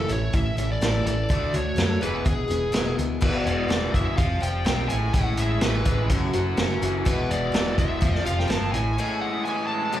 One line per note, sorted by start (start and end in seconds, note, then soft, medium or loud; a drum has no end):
0.00 0.11 A4 medium
0.08 0.29 A1 medium
0.08 0.32 A2 medium
0.08 0.32 E3 medium
0.08 0.32 A3 soft
0.08 0.33 C#4 soft
0.08 0.33 E4 medium
0.08 0.35 C#5 medium
0.08 closed hi-hat medium
0.33 0.53 A1 medium
0.33 0.56 A2 medium
0.33 0.57 E3 medium
0.33 0.58 A3 medium
0.33 0.57 C#4 medium
0.33 0.56 E4 medium
0.33 0.71 E5 medium
0.33 kick loud
0.33 closed hi-hat medium
0.57 0.77 A1 medium
0.57 0.80 A2 medium
0.57 0.80 E3 medium
0.57 0.81 A3 soft
0.57 0.81 C#4 medium
0.57 0.81 E4 medium
0.57 closed hi-hat medium
0.72 1.06 D5 medium
0.81 1.01 A1 medium
0.81 1.30 A2 medium
0.81 1.28 E3 medium
0.81 1.29 A3 medium
0.81 1.30 C#4 medium
0.81 1.31 E4 medium
0.81 snare loud
0.81 closed hi-hat medium
1.05 1.25 A1 medium
1.05 1.28 A2 medium
1.05 1.28 E3 medium
1.05 1.56 D5 medium
1.05 closed hi-hat medium
1.29 1.50 D2 medium
1.29 1.53 D3 medium
1.29 1.54 A3 medium
1.29 1.53 D4 medium
1.29 1.52 F#4 medium
1.29 kick loud
1.29 closed hi-hat medium
1.53 1.73 D2 medium
1.53 1.76 D3 medium
1.53 1.76 A3 soft
1.53 1.77 D4 soft
1.53 1.76 F#4 soft
1.53 2.05 C#5 medium
1.53 closed hi-hat medium
1.76 1.97 F#2 medium
1.76 2.01 D3 medium
1.76 2.02 A3 medium
1.76 2.01 D4 medium
1.76 2.01 F#4 medium
1.76 snare loud
1.76 closed hi-hat medium
2.01 2.21 E1 medium
2.01 2.25 E2 medium
2.01 2.25 B2 medium
2.01 2.24 E3 soft
2.01 2.25 G#3 soft
2.01 2.25 B3 soft
2.01 2.26 G#4 medium
2.01 2.26 B4 medium
2.01 closed hi-hat medium
2.25 2.46 E1 medium
2.25 2.48 E2 medium
2.25 2.48 B2 medium
2.25 2.50 E3 medium
2.25 2.48 G#3 medium
2.25 2.48 B3 medium
2.25 2.94 G#4 medium
2.25 2.47 G#4 medium
2.25 kick loud
2.25 closed hi-hat medium
2.48 2.69 E1 medium
2.48 2.72 E2 medium
2.48 2.72 B2 medium
2.48 2.72 E3 soft
2.48 2.71 G#3 soft
2.48 2.72 B3 soft
2.48 2.72 G#4 soft
2.48 closed hi-hat medium
2.72 2.93 E1 medium
2.72 3.19 E2 medium
2.72 3.20 B2 medium
2.72 3.20 E3 medium
2.72 3.20 G#3 medium
2.72 3.21 B3 medium
2.72 3.22 G#4 medium
2.72 snare loud
2.72 closed hi-hat medium
2.98 3.18 D2 medium
2.98 3.20 E2 medium
2.98 3.20 B2 medium
2.98 closed hi-hat medium
3.21 3.45 E1 medium
3.21 3.70 E2 medium
3.21 3.70 B2 medium
3.21 3.67 E3 medium
3.21 3.68 G#3 medium
3.21 3.69 B3 medium
3.21 3.70 F#4 medium
3.21 3.48 B4 medium
3.21 kick loud
3.21 crash loud
3.46 3.69 E1 medium
3.46 3.93 G#3 medium
3.46 3.95 D5 medium
3.46 closed hi-hat medium
3.68 3.93 E1 medium
3.68 4.17 E3 medium
3.68 4.17 G#3 medium
3.68 4.18 B3 medium
3.68 4.18 F#4 medium
3.68 snare loud
3.68 closed hi-hat medium
3.94 4.17 F#1 medium
3.94 4.18 G#3 medium
3.94 4.20 E5 medium
3.94 kick medium
3.94 closed hi-hat medium
4.17 4.41 F1 medium
4.17 4.42 F3 medium
4.17 4.42 G3 medium
4.17 4.41 C4 medium
4.17 4.39 F4 medium
4.17 4.40 F5 medium
4.17 kick loud
4.17 closed hi-hat medium
4.40 4.65 F1 medium
4.40 4.64 G3 soft
4.40 4.65 C4 soft
4.40 4.65 F4 medium
4.40 4.65 G5 loud
4.40 closed hi-hat medium
4.65 4.89 B1 medium
4.65 4.90 F3 medium
4.65 4.90 G3 medium
4.65 4.90 C4 medium
4.65 4.88 F4 medium
4.65 4.88 G5 medium
4.65 snare loud
4.65 closed hi-hat medium
4.89 5.13 A1 medium
4.89 5.12 A2 medium
4.89 5.13 G#3 soft
4.89 5.14 C#4 soft
4.89 5.14 E4 soft
4.89 5.14 G#5 medium
4.89 closed hi-hat medium
5.13 5.37 A1 medium
5.13 5.62 A2 medium
5.13 5.60 E3 medium
5.13 5.61 G#3 medium
5.13 5.62 C#4 medium
5.13 5.63 E4 medium
5.13 5.39 F#5 loud
5.13 kick loud
5.13 closed hi-hat medium
5.37 5.61 A1 medium
5.37 5.85 G#3 medium
5.37 5.64 E5 medium
5.37 closed hi-hat medium
5.61 5.85 A1 medium
5.61 6.09 E3 medium
5.61 6.10 G#3 medium
5.61 6.11 C#4 medium
5.61 6.11 E4 medium
5.61 6.08 B4 medium
5.61 snare loud
5.61 closed hi-hat loud
5.85 6.09 A1 medium
5.85 6.10 G#3 medium
5.85 kick medium
5.85 closed hi-hat medium
6.09 6.33 F#1 medium
6.09 6.34 F#2 medium
6.09 6.34 C#3 medium
6.09 6.35 E3 medium
6.09 6.34 A3 medium
6.09 6.33 C#4 medium
6.09 6.32 F#4 medium
6.09 kick loud
6.09 closed hi-hat medium
6.33 6.57 F#1 medium
6.33 6.56 E3 soft
6.33 6.57 A3 medium
6.33 6.58 C#4 medium
6.33 6.58 F#4 medium
6.33 closed hi-hat medium
6.57 6.81 F#1 medium
6.57 6.82 E3 medium
6.57 6.82 A3 medium
6.57 6.81 C#4 medium
6.57 6.81 F#4 medium
6.57 snare loud
6.57 closed hi-hat medium
6.81 7.05 F#1 medium
6.81 7.05 E3 soft
6.81 7.06 A3 soft
6.81 7.06 C#4 medium
6.81 7.06 F#4 medium
6.81 closed hi-hat medium
7.05 7.29 E1 medium
7.05 7.54 E2 medium
7.05 7.54 B2 medium
7.05 7.51 E3 medium
7.05 7.52 G#3 medium
7.05 7.53 B3 medium
7.05 7.54 F#4 medium
7.05 7.31 B4 medium
7.05 kick loud
7.05 closed hi-hat medium
7.29 7.53 E1 medium
7.29 7.76 G#3 medium
7.29 7.75 D5 medium
7.29 closed hi-hat medium
7.52 7.77 E1 medium
7.52 8.00 E3 medium
7.52 8.01 G#3 medium
7.52 8.02 B3 medium
7.52 8.02 F#4 medium
7.52 snare loud
7.52 closed hi-hat medium
7.77 8.02 E1 medium
7.77 8.02 G#3 medium
7.77 8.25 E5 medium
7.77 kick medium
7.77 closed hi-hat medium
8.01 8.25 F1 loud
8.01 8.25 F3 medium
8.01 8.26 G3 medium
8.01 8.26 C4 medium
8.01 8.24 F4 medium
8.01 kick loud
8.01 closed hi-hat medium
8.15 snare soft
8.25 8.49 F1 medium
8.25 8.48 G3 soft
8.25 8.49 C4 medium
8.25 8.50 F4 medium
8.25 8.38 F5 loud
8.25 closed hi-hat medium
8.39 8.50 G5 medium
8.39 snare soft
8.48 8.73 G1 medium
8.48 8.73 F3 medium
8.48 8.73 G3 medium
8.48 8.74 C4 medium
8.48 8.73 F4 medium
8.48 8.72 A5 loud
8.48 snare loud
8.48 closed hi-hat medium
8.72 8.97 A1 medium
8.72 8.97 A2 medium
8.72 8.98 C#4 soft
8.72 8.98 E4 soft
8.72 9.21 G#5 medium
8.72 closed hi-hat medium
8.76 8.98 G#3 soft
8.98 9.46 A2 medium
8.98 9.44 E3 medium
8.98 9.45 G#3 medium
8.98 9.46 C#4 medium
8.98 9.47 E4 medium
9.21 9.68 G#3 medium
9.21 9.44 F#5 medium
9.45 9.92 E3 medium
9.45 9.93 G#3 medium
9.45 9.92 C#4 medium
9.45 9.94 E4 medium
9.45 9.66 G#5 medium
9.67 9.93 G#3 medium
9.67 10.00 A5 medium
9.92 10.00 F#2 medium
9.92 10.00 C#3 medium
9.92 10.00 E3 medium
9.92 10.00 A3 medium
9.92 10.00 C#4 medium
9.92 10.00 F#4 medium